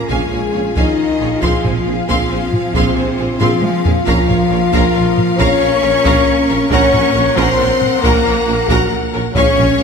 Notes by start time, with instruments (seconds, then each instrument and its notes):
Already playing: string section C#4 F4 G#4 F5, french horn section A#4, violin section A#5
0.09 tuba A#1, double bass section A#1, cello section G#3, viola section C#4 G#4, french horn section G#4, violin section F5 G#5, taiko
0.31 tuba A#1, double bass section A#1, viola section C#4 G#4, violin section C#5 F5
0.52 tuba A#1, double bass section A#1, viola section C#4 G#4, violin section G#4 C#5
0.75 tuba A#1, double bass section A#1, cello section D#3, viola section C#4 G#4, french horn section D#4, violin section D#5 F5 G#5, taiko
1.20 tuba A#1, double bass section A#1, viola section C#4 G#4, violin section G#4 C#5
1.41 tuba A#1, double bass section A#1, cello section F3, viola section C4 G#4, string section C4, french horn section F4, violin section F5 C6, taiko
1.64 tuba A#1, double bass section A#1, viola section C4 G#4, violin section C5 G#5, taiko low-mid
1.85 tuba A#1, double bass section A#1, viola section C4 G#4, violin section G#4 F5
2.08 tuba A#1, double bass section A#1, cello section F3, viola section C4 G#4, french horn section F4, violin section F5 C6, taiko
2.30 tuba A#1, double bass section A#1, viola section C4 G#4, violin section C5 G#5
2.53 taiko low-mid
2.74 tuba A#1, double bass section A#1, cello section C3, french horn section C4, viola section C4 G#4, violin section C5 F5 C6, taiko
2.95 tuba A#1, double bass section A#1, viola section C4 G#4, violin section C5 G#5
3.18 tuba A#1, double bass section A#1, viola section C4 G#4, violin section G#4 F5
3.39 tuba A#1, double bass section A#1, cello section F3, viola section C4 G#4, french horn section F4, violin section F5 C6, taiko low-mid
3.63 taiko high
3.84 tuba A#1, double bass section A#1, viola section C4 G#4, violin section G#4 F5, taiko low
4.06 tuba A#1, double bass section A#1, cello section F3, string section A#3 A#4 F5, viola section C#4 A#4, french horn section F4, violin section F5 A#5, taiko
4.28 double bass section A#1, tuba A#1, viola section C#4 A#4, violin section C#5 F5, taiko low-mid
4.50 double bass section A#1, tuba A#1, viola section C#4 A#4, violin section A#4 C#5
4.73 tuba A#1, double bass section A#1, viola section C#4 A#4, violin section F5 A#5, taiko
4.94 tuba A#1, double bass section A#1, viola section C#4 A#4, violin section C#5 F5
5.18 taiko low-mid
5.38 double bass section A#1, tuba A#1, cello section C#4, viola section C#4 A#4, french horn section C#5, violin section F5 A#5 C#6, taiko
5.60 tuba A#1, double bass section A#1, viola section C#4 A#4, violin section C#5 F5
5.83 tuba A#1, double bass section A#1, viola section C#4 A#4, violin section A#4 C#5
6.04 tuba A#1, double bass section A#1, viola section C#4 A#4, violin section F5 A#5, taiko
6.49 tuba A#1, double bass section A#1, viola section C#4 A#4, violin section A#4 C#5
6.70 double bass section A#1, tuba A#1, viola section C#4 A#4, cello section C#4, french horn section C#5, string section F#5, violin section F#5 A#5 C#6, taiko
6.93 tuba A#1, double bass section A#1, viola section C#4 A#4, violin section C#5 F#5, taiko low-mid
7.15 tuba A#1, double bass section A#1, viola section C#4 A#4, violin section A#4 C#5
7.36 double bass section A#1, tuba A#1, cello section C4, viola section C#4 A#4, french horn section C5, violin section F#5 A#5 C6, taiko
7.58 tuba A#1, double bass section A#1, viola section C#4 A#4, violin section C#5 F#5
7.82 taiko low-mid
8.03 tuba A#1, double bass section A#1, cello section A#3, viola section C#4 A#4, french horn section A#4, violin section F#5 A#5, taiko
8.25 tuba A#1, double bass section A#1, viola section C#4 A#4, violin section C#5 F#5
8.46 tuba A#1, double bass section A#1, viola section C#4 A#4, violin section A#4 C#5
8.68 tuba A#1, double bass section A#1, cello section F#3, viola section C#4 A#4, french horn section F#4, violin section F#5 A#5, taiko
9.12 tuba A#1, double bass section A#1, viola section C#4 A#4, violin section A#4 C#5
9.34 double bass section A#1, tuba A#1, string section G#3 C#4 C#5 F5, cello section C#4, viola section C#4 G#4, french horn section C#5, violin section F5 C#6, taiko
9.57 tuba A#1, double bass section A#1, viola section C#4 G#4, violin section C#5 G#5, taiko low-mid
9.79 tuba A#1, double bass section A#1, viola section C#4 G#4